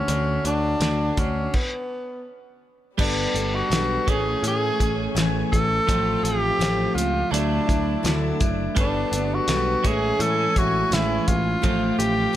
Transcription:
Already playing: tenor saxophone C#4
0.08 picked electric bass D2, steel-string acoustic guitar D3 A3 F#4, closed hi-hat
0.44 picked electric bass D2, clean electric guitar D3, steel-string acoustic guitar A3 D4 F#4, tenor saxophone D4, closed hi-hat
0.80 picked electric bass D2, steel-string acoustic guitar D3 A3 D4 F#4, snare, closed hi-hat
1.17 picked electric bass D2, clean electric guitar D3, steel-string acoustic guitar A3 F#4, tenor saxophone C#4, kick, closed hi-hat
1.54 tenor saxophone B3, kick, crash
2.96 picked electric bass G1, string section G3 A3 B3, steel-string acoustic guitar G3 B3 D4, kick, crash
3.00 tenor saxophone D4, steel-string acoustic guitar A4
3.34 picked electric bass G1, steel-string acoustic guitar B3 D4 A4, closed hi-hat
3.54 tenor saxophone F#4
3.70 picked electric bass B1, steel-string acoustic guitar G3 B3 D4 A4, snare, closed hi-hat
4.06 picked electric bass A1, clean electric guitar A2 E3, string section A3 C#4 G#5, steel-string acoustic guitar A3 C#4 G#4, tenor saxophone G#4, kick, closed hi-hat
4.43 picked electric bass A2, steel-string acoustic guitar E3 A3 C#4 G#4, closed hi-hat
4.47 tenor saxophone G#4
4.79 picked electric bass A1, steel-string acoustic guitar A3 C#4 G#4, kick, closed hi-hat
5.15 picked electric bass A1, steel-string acoustic guitar A2 E3 A3 C#4 G#4, snare, closed hi-hat
5.52 picked electric bass A1, steel-string acoustic guitar A3 C#4, tenor saxophone A4, kick, closed hi-hat
5.88 picked electric bass A1, steel-string acoustic guitar A2 F3 A3 C4 F4, string section A3 C4 F4, kick, closed hi-hat
6.23 picked electric bass A1, steel-string acoustic guitar C4 F4, tenor saxophone G4, closed hi-hat
6.27 steel-string acoustic guitar A3
6.59 picked electric bass A1, steel-string acoustic guitar A2 F3 A3 C4 F4, snare, closed hi-hat
6.94 picked electric bass C#2, steel-string acoustic guitar A3 C4 F4, tenor saxophone F4, closed hi-hat
7.31 picked electric bass D2, clean electric guitar D3, string section F#3 D4 E4, steel-string acoustic guitar F#3 A3 D4 E4, tenor saxophone D4, closed hi-hat
7.67 picked electric bass D2, steel-string acoustic guitar A3 D4 E4, kick, closed hi-hat
8.03 picked electric bass D2, steel-string acoustic guitar D3 F#3 A3 D4 E4, snare, closed hi-hat
8.40 picked electric bass F#1, steel-string acoustic guitar A3 D4 E4, kick, closed hi-hat
8.75 picked electric bass G1, string section G3 A3 B3, steel-string acoustic guitar G3 B3 D4 A4, kick, closed hi-hat
8.80 tenor saxophone D4
9.12 picked electric bass G1, steel-string acoustic guitar B3 D4 A4, closed hi-hat
9.34 tenor saxophone F#4
9.48 picked electric bass B1, steel-string acoustic guitar G3 B3 D4 A4, snare, closed hi-hat
9.83 picked electric bass A1, clean electric guitar A2 E3, string section C#4 G#5, steel-string acoustic guitar C#4 E4, kick, closed hi-hat
9.87 steel-string acoustic guitar G#3, tenor saxophone G#4
10.19 picked electric bass A2, steel-string acoustic guitar E3 C#4 E4, tenor saxophone A4, closed hi-hat
10.56 picked electric bass A1, steel-string acoustic guitar G#3 C#4 E4, tenor saxophone F#4, kick, closed hi-hat
10.91 picked electric bass A1, steel-string acoustic guitar A2 E3 G#3 C#4 E4, tenor saxophone E4, snare, closed hi-hat
11.28 picked electric bass A1, steel-string acoustic guitar G#3 C#4, tenor saxophone F4, kick, closed hi-hat
11.62 picked electric bass A1, steel-string acoustic guitar A2 F3 A3 C4 F4, string section A3 C4 F4, kick, closed hi-hat
11.98 picked electric bass A1, steel-string acoustic guitar A3 C4 F4, tenor saxophone G4, closed hi-hat
12.33 steel-string acoustic guitar A2

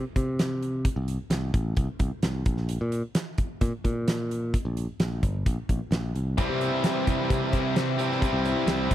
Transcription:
0.16 picked electric bass C3, kick, closed hi-hat
0.39 snare, closed hi-hat
0.63 closed hi-hat
0.85 kick, closed hi-hat
0.96 picked electric bass C2
1.08 closed hi-hat
1.30 picked electric bass C2, snare, closed hi-hat
1.54 picked electric bass A1, kick, closed hi-hat
1.77 picked electric bass C2, kick, closed hi-hat
1.99 picked electric bass C2, kick, closed hi-hat
2.23 picked electric bass C2, snare, closed hi-hat
2.46 picked electric bass A#1, kick, closed hi-hat
2.57 snare
2.69 closed hi-hat
2.81 picked electric bass A#2
2.92 closed hi-hat
3.15 snare, closed hi-hat
3.38 kick, closed hi-hat
3.61 picked electric bass A#2, kick, closed hi-hat
3.84 picked electric bass A#2, kick, closed hi-hat
4.08 snare, closed hi-hat
4.31 closed hi-hat
4.54 kick, closed hi-hat
4.65 picked electric bass A#1
4.77 closed hi-hat
5.00 picked electric bass A#1, snare, closed hi-hat
5.23 picked electric bass G1, kick, closed hi-hat
5.46 picked electric bass A#1, kick, closed hi-hat
5.69 picked electric bass A#1, kick, closed hi-hat
5.91 picked electric bass A#1, snare, closed hi-hat
6.15 picked electric bass C2, closed hi-hat
6.38 twelve-string acoustic guitar C3 G3 C4 E4 C5, distorted electric guitar E3, kick, closed hi-hat
6.49 picked electric bass C3
6.61 twelve-string acoustic guitar C4 E4 C5, closed hi-hat
6.84 twelve-string acoustic guitar C3 G3 C4 E4 C5, snare, closed hi-hat
7.07 twelve-string acoustic guitar C4 E4 C5, kick, closed hi-hat
7.30 picked electric bass C3, twelve-string acoustic guitar G3 C4 E4 C5, kick, closed hi-hat
7.52 picked electric bass C3, distorted electric guitar C3 E3 G3, twelve-string acoustic guitar C4 E4 C5, kick, closed hi-hat
7.76 twelve-string acoustic guitar C3 G3 C4 E4 C5, distorted electric guitar E3, snare, closed hi-hat
7.99 overdriven electric guitar C3 G3, twelve-string acoustic guitar C4 E4 C5, closed hi-hat
8.12 snare
8.22 twelve-string acoustic guitar C3 G3 C4 E4 C5, distorted electric guitar E3, kick, closed hi-hat
8.33 picked electric bass C2
8.45 twelve-string acoustic guitar C4 E4 C5, closed hi-hat
8.67 picked electric bass C2, twelve-string acoustic guitar C3 G3 C4 E4 C5, snare, closed hi-hat
8.90 picked electric bass A1, twelve-string acoustic guitar E4 C5, kick, closed hi-hat

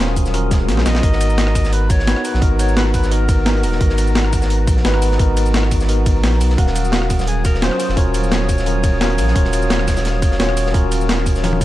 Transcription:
Already playing: sub bass D#1, analog synth pad F#3 F5 D#6, tine electric piano C#4 F4 F#4 A#4 C5
0.16 kick, closed hi-hat, open hi-hat, shaker
0.26 snare, shaker
0.33 tine electric piano C#4 F4 F#4 A#4, cross-stick, closed hi-hat, swell
0.51 kick, snare, closed hi-hat, shaker
0.69 sub bass A#1, snare, closed hi-hat
0.77 snare
0.86 sub bass A#1, alto saxophone D#5, snare, closed hi-hat, open hi-hat, shaker
0.95 snare, closed hi-hat
1.02 sub bass G#1, tine electric piano B3 D#4 F#4 A#4, analog synth pad F#5 A#5, kick, closed hi-hat
1.12 snare
1.21 closed hi-hat, ride, shaker
1.30 shaker
1.38 snare, closed hi-hat
1.47 cross-stick
1.55 kick, cross-stick, closed hi-hat, open hi-hat, ride, shaker
1.64 snare, shaker
1.73 alto saxophone B4, closed hi-hat
1.90 alto saxophone C#5, kick, closed hi-hat, ride, shaker
1.99 snare
2.07 tine electric piano B3 D#4 F#4 B4, snare, closed hi-hat
2.16 cross-stick
2.25 alto saxophone B4, closed hi-hat, open hi-hat, ride, shaker
2.34 sub bass A#1, snare
2.41 sub bass G#1, tine electric piano B3 D#4 F#4 A#4, alto saxophone A#4, kick, closed hi-hat
2.59 alto saxophone C#5, closed hi-hat, ride, shaker
2.68 shaker
2.77 alto saxophone B4, snare, closed hi-hat
2.94 alto saxophone B4, kick, closed hi-hat, open hi-hat, ride, shaker
3.03 snare, shaker
3.11 tine electric piano B3 D#4 F#4 A#4, alto saxophone A#4, closed hi-hat
3.29 kick, closed hi-hat, ride, shaker
3.45 tine electric piano B3 D#4 F#4 A#4, snare, closed hi-hat
3.57 closed hi-hat
3.63 sub bass D#1, alto saxophone A#4, closed hi-hat, open hi-hat, ride, shaker
3.72 snare
3.80 sub bass G#1, tine electric piano B3 D#4 F#4 A#4, kick, closed hi-hat
3.89 snare
3.98 closed hi-hat, ride, shaker
4.07 shaker
4.15 snare, closed hi-hat
4.24 cross-stick
4.33 kick, cross-stick, closed hi-hat, open hi-hat, ride, shaker
4.42 snare, shaker
4.50 closed hi-hat
4.67 sub bass A#1, kick, closed hi-hat, ride, shaker
4.77 snare
4.84 sub bass G#1, tine electric piano B3 D#4 F#4 B4, snare, closed hi-hat
4.94 cross-stick
5.02 closed hi-hat, open hi-hat, ride, shaker
5.12 snare
5.18 sub bass G#1, tine electric piano B3 D#4 F#4 A#4, kick, closed hi-hat
5.37 closed hi-hat, ride, shaker
5.46 shaker
5.54 snare, closed hi-hat
5.63 cross-stick
5.71 kick, closed hi-hat, open hi-hat, ride, shaker
5.80 snare, shaker
5.88 tine electric piano B3 D#4 F#4 A#4, closed hi-hat
6.06 kick, closed hi-hat, ride, shaker
6.23 sub bass A#1, snare, closed hi-hat
6.32 closed hi-hat
6.40 sub bass B1, closed hi-hat, open hi-hat, ride, shaker
6.50 snare
6.57 sub bass D#1, analog synth pad F#3 F5 D#6, tine electric piano C#4 F#4 A#4 F5, alto saxophone F#4, kick, closed hi-hat
6.67 snare
6.75 closed hi-hat, ride, shaker
6.85 shaker
6.92 snare, closed hi-hat
7.02 cross-stick
7.10 kick, cross-stick, closed hi-hat, open hi-hat, ride, shaker
7.19 snare, shaker
7.27 alto saxophone G#4, closed hi-hat
7.45 alto saxophone A#4, kick, closed hi-hat, ride, shaker
7.55 snare
7.62 tine electric piano C#4 F4 F#4 C5, alto saxophone C5, snare, closed hi-hat
7.71 cross-stick
7.80 closed hi-hat, open hi-hat, ride, shaker
7.89 sub bass F1, snare
7.96 sub bass D#1, tine electric piano C#4 F4 F#4 A#4, alto saxophone C#5, kick, closed hi-hat
8.14 closed hi-hat, ride, shaker
8.23 shaker
8.31 snare, closed hi-hat
8.49 kick, closed hi-hat, open hi-hat, ride, shaker
8.58 snare, shaker
8.66 tine electric piano C#4 F4 F#4 A#4, closed hi-hat
8.83 kick, closed hi-hat, ride, shaker
9.01 tine electric piano C#4 F4 F#4 A#4, snare, closed hi-hat
9.10 closed hi-hat
9.18 sub bass A#1, closed hi-hat, open hi-hat, ride, shaker
9.28 snare
9.34 sub bass D#1, tine electric piano C#4 F4 F#4 A#4, kick, closed hi-hat
9.45 snare
9.53 closed hi-hat, ride, shaker
9.62 shaker
9.70 snare, closed hi-hat
9.79 cross-stick
9.88 kick, cross-stick, snare, closed hi-hat, open hi-hat, ride, shaker
9.97 snare, closed hi-hat, shaker
10.05 snare, closed hi-hat
10.22 sub bass F1, kick, closed hi-hat, ride, shaker
10.31 snare
10.39 sub bass D#1, tine electric piano C#4 F4 F#4 C#5, snare, closed hi-hat
10.49 cross-stick
10.57 closed hi-hat, open hi-hat, ride, shaker
10.66 snare
10.73 sub bass D#1, tine electric piano C#4 F4 F#4 A#4, kick, closed hi-hat
10.92 closed hi-hat, ride, shaker
11.01 shaker
11.09 snare, closed hi-hat
11.26 kick, closed hi-hat, open hi-hat, ride, shaker
11.35 snare, shaker
11.43 tine electric piano C#4 F4 F#4 A#4, cross-stick, snare, closed hi-hat, high tom
11.53 high tom
11.61 kick, closed hi-hat, ride, shaker

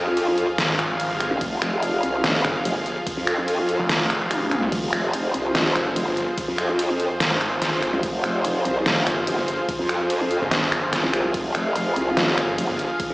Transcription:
Already playing: wobble bass F2, supersaw synth F3 F4 G#4 F5
0.17 closed hi-hat, crash
0.38 closed hi-hat
0.58 snare, closed hi-hat, crash
0.69 detuned saw bass G#1
0.79 finger snap, closed hi-hat
1.00 closed hi-hat, crash
1.10 detuned saw bass G1
1.20 finger snap, closed hi-hat
1.31 wobble bass C2
1.41 wobble bass F1, kick, closed hi-hat, crash
1.62 finger snap, closed hi-hat
1.83 closed hi-hat, crash
2.03 wobble bass C2, closed hi-hat
2.24 wobble bass F1, snare, closed hi-hat, crash
2.45 detuned saw bass G1, finger snap, closed hi-hat
2.65 wobble bass F1, closed hi-hat, crash
2.76 detuned saw bass G1
2.86 closed hi-hat
3.07 kick, closed hi-hat, crash
3.17 wobble bass F2
3.27 finger snap, closed hi-hat
3.48 closed hi-hat, crash
3.69 closed hi-hat
3.79 detuned saw bass F1
3.89 snare, closed hi-hat, crash
4.10 finger snap, closed hi-hat
4.21 detuned saw bass F1
4.31 finger snap, closed hi-hat, high tom, crash
4.41 high tom
4.51 finger snap, closed hi-hat, mid tom
4.62 detuned saw bass C2, mid tom
4.72 wobble bass F1, supersaw synth F3 F4 G#4 C5, kick, closed hi-hat, crash
4.93 finger snap, closed hi-hat
5.13 closed hi-hat, crash
5.34 wobble bass C2, closed hi-hat
5.55 wobble bass F1, snare, closed hi-hat, crash
5.76 detuned saw bass G1, finger snap, closed hi-hat
5.96 wobble bass F1, closed hi-hat, crash
6.07 detuned saw bass G1
6.17 closed hi-hat
6.38 kick, closed hi-hat, crash
6.48 wobble bass F2
6.58 finger snap, closed hi-hat
6.79 closed hi-hat, crash
7.00 closed hi-hat
7.20 snare, closed hi-hat, crash
7.31 detuned saw bass G#1
7.41 finger snap, closed hi-hat
7.62 snare, closed hi-hat, crash
7.72 detuned saw bass G1
7.82 finger snap, closed hi-hat
7.93 wobble bass C2
8.03 wobble bass F1, kick, closed hi-hat, crash
8.24 finger snap, closed hi-hat
8.45 closed hi-hat, crash
8.65 wobble bass C2, closed hi-hat
8.86 wobble bass F1, snare, closed hi-hat, crash
9.07 detuned saw bass G1, finger snap, closed hi-hat
9.27 wobble bass F1, closed hi-hat, crash
9.38 detuned saw bass G1
9.48 closed hi-hat
9.69 kick, closed hi-hat, crash
9.79 wobble bass F2
9.89 finger snap, closed hi-hat
10.10 closed hi-hat, crash
10.31 closed hi-hat
10.41 detuned saw bass G1
10.51 snare, closed hi-hat, crash
10.72 finger snap, closed hi-hat
10.93 finger snap, snare, closed hi-hat, crash
11.03 wobble bass C2
11.13 finger snap, closed hi-hat
11.24 wobble bass C2
11.34 wobble bass F1, supersaw synth F5, kick, closed hi-hat, crash
11.55 finger snap, closed hi-hat
11.76 closed hi-hat, crash
11.96 wobble bass C2, closed hi-hat
12.17 wobble bass F1, snare, closed hi-hat, crash
12.38 detuned saw bass G1, finger snap, closed hi-hat
12.58 wobble bass F1, closed hi-hat, crash
12.69 detuned saw bass G1
12.79 closed hi-hat
13.00 kick, closed hi-hat, crash
13.10 wobble bass F2

